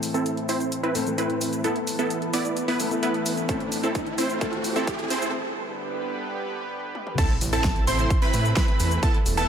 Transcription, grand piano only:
0.00 0.92 A2 medium
0.00 0.92 E3 medium
0.00 0.92 A3 medium
0.00 0.93 C4 medium
0.00 0.93 A4 medium
0.94 1.03 A2 medium
0.94 1.04 E3 medium
0.94 1.04 A3 medium
0.94 1.04 C4 medium
0.94 1.04 A4 medium
1.05 1.61 A2 medium
1.05 1.61 E3 medium
1.05 1.61 A3 medium
1.05 1.62 C4 medium
1.05 1.62 A4 medium
1.63 2.76 E3 medium
1.63 2.77 A3 medium
1.63 2.77 B3 medium
1.63 2.78 A4 medium
2.79 2.88 E3 medium
2.79 2.88 A3 medium
2.79 2.89 B3 medium
2.79 2.89 A4 loud
2.90 3.46 E3 medium
2.90 3.46 A3 medium
2.90 3.46 B3 medium
2.90 3.47 A4 medium
3.48 4.39 A2 medium
3.48 4.39 E3 medium
3.48 4.39 A3 medium
3.48 4.40 C4 medium
3.48 4.40 A4 medium
4.40 5.31 A2 medium
4.40 5.31 E3 medium
4.40 5.32 A3 medium
4.40 5.32 C4 medium
4.40 5.32 A4 medium

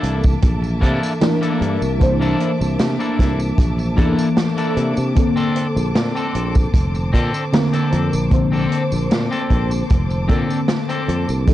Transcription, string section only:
0.00 5.12 A#3 medium
0.00 5.12 E5 medium
0.00 11.44 A5 medium
0.00 11.54 D6 medium
5.17 11.44 C5 medium
11.48 11.54 A#3 medium
11.48 11.54 E5 medium
11.48 11.54 A5 medium

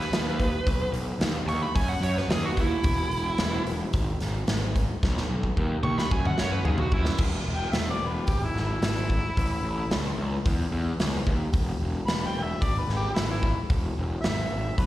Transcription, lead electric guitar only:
0.00 0.91 B4 loud
1.49 1.62 C#6 loud
1.62 1.75 B5 loud
1.75 1.89 G#5 medium
1.89 2.02 F#5 medium
2.04 2.18 C#5 medium
2.18 2.30 B4 loud
2.31 2.45 G#4 medium
2.45 2.60 F#4 medium
2.60 3.64 E4 loud
5.83 5.97 C#6 loud
5.99 6.12 B5 medium
6.12 6.25 G#5 medium
6.27 6.39 F#5 medium
6.39 6.52 C#5 medium
6.51 6.65 B4 loud
6.65 6.79 G#4 medium
6.79 6.93 F#4 loud
6.93 7.19 E4 loud

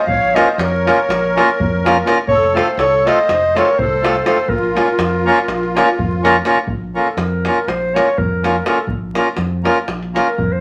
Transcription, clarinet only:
0.07 0.36 F5 loud
0.35 0.61 D#5 medium
0.60 2.07 C#5 medium
2.28 2.58 C#5 loud
2.56 2.79 C5 loud
2.79 3.08 C#5 loud
3.07 3.59 D#5 loud
3.57 3.80 C#5 loud
3.79 4.26 C5 loud
4.27 4.51 C5 loud
4.49 6.25 A#4 medium
6.97 7.22 A4 medium
7.20 7.70 A#4 medium
7.69 7.96 C5 loud
7.95 8.20 C#5 loud
8.18 8.67 A#4 medium
8.65 8.87 A4 medium
10.29 10.54 A#4 medium
10.52 10.61 C5 medium

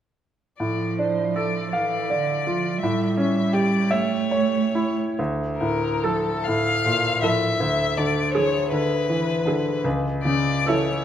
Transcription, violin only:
0.58 0.95 D5 soft
0.99 1.36 C5 soft
1.36 1.72 D5 soft
1.73 2.80 D5 soft
2.81 3.16 E5 soft
3.18 3.55 E5 soft
3.53 3.92 D5 soft
3.91 4.96 C#5 soft
5.57 6.05 A#4 soft
6.04 6.46 A4 soft
6.45 7.22 F5 medium
7.23 7.99 E5 medium
7.98 8.33 D5 soft
8.34 8.71 C#5 medium
8.72 9.82 B4 soft
10.24 10.70 D5 medium
10.68 11.05 C#5 medium

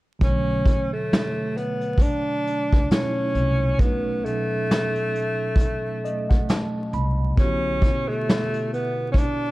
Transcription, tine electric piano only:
0.19 2.85 B2 medium
0.19 2.86 F#3 medium
0.19 2.87 A3 medium
0.24 2.88 D3 medium
0.24 2.87 C#5 medium
2.90 3.76 B2 soft
2.90 3.78 F#3 soft
2.90 3.79 A3 soft
2.90 3.81 C#4 soft
2.90 2.99 D#4 soft
3.00 3.84 E4 medium
3.77 7.33 B2 medium
3.77 7.33 F#3 medium
3.77 7.34 A3 medium
3.82 7.35 C#4 medium
3.82 7.36 D#4 medium
6.05 6.27 D#5 medium
6.30 6.47 F#5 medium
6.49 6.90 A5 medium
6.94 7.35 B5 medium
7.36 9.51 B2 medium
7.36 9.51 D3 medium
7.36 9.51 B3 medium
7.36 9.51 E4 medium
7.41 9.51 F#4 medium
7.41 9.51 G4 medium

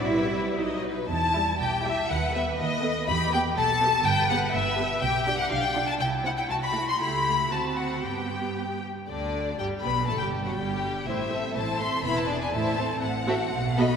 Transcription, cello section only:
0.04 0.57 E4 medium
1.10 1.57 E4 medium
1.61 2.10 G4 medium
2.11 3.07 B4 medium
3.09 3.58 G4 medium
3.58 4.06 A4 medium
4.07 5.01 B4 medium
5.04 5.51 G4 medium
5.52 6.02 D4 medium
6.01 6.50 E4 medium
6.50 7.00 F#4 medium
7.01 7.52 E4 medium
7.52 8.04 F#4 soft
8.04 8.82 G4 soft
9.09 9.56 D2 soft
9.59 9.67 G2 medium
9.85 10.09 B2 medium
10.09 10.21 A2 medium
10.22 10.46 G2 medium
10.47 10.59 F#2 medium
10.58 11.07 G2 medium
11.08 11.49 A2 medium
11.57 11.98 A2 medium
12.06 12.46 E2 medium
12.55 12.96 A2 medium
13.03 13.45 A2 medium
13.54 13.95 B2 medium

